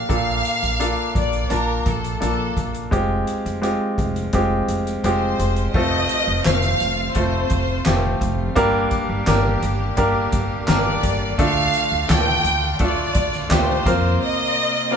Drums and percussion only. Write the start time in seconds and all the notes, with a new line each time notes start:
0.10 kick, closed hi-hat
0.45 closed hi-hat
0.63 closed hi-hat
0.81 closed hi-hat
1.15 kick, closed hi-hat
1.33 closed hi-hat
1.50 closed hi-hat
1.86 kick, closed hi-hat
2.04 closed hi-hat
2.22 closed hi-hat
2.57 kick, closed hi-hat
2.75 closed hi-hat
2.92 kick, closed hi-hat
3.27 closed hi-hat
3.46 closed hi-hat
3.63 closed hi-hat
3.98 kick, closed hi-hat
4.16 closed hi-hat
4.33 kick, closed hi-hat
4.69 closed hi-hat
4.87 closed hi-hat
5.04 closed hi-hat
5.40 closed hi-hat
5.56 closed hi-hat
5.74 kick, crash
6.09 closed hi-hat
6.45 snare, clap, closed hi-hat
6.62 closed hi-hat
6.80 closed hi-hat
7.15 kick, closed hi-hat
7.50 kick, closed hi-hat
7.85 snare, clap, closed hi-hat
8.21 kick, closed hi-hat
8.56 kick, closed hi-hat
8.91 kick, closed hi-hat
9.27 snare, clap, closed hi-hat
9.63 closed hi-hat
9.97 kick, closed hi-hat
10.32 kick, closed hi-hat
10.68 snare, clap, closed hi-hat
11.03 kick, closed hi-hat
11.39 kick, closed hi-hat
11.74 closed hi-hat
12.10 snare, clap, closed hi-hat
12.45 closed hi-hat
12.79 kick, closed hi-hat
13.15 kick, closed hi-hat
13.33 snare, closed hi-hat
13.51 snare, clap, closed hi-hat
13.86 kick, closed hi-hat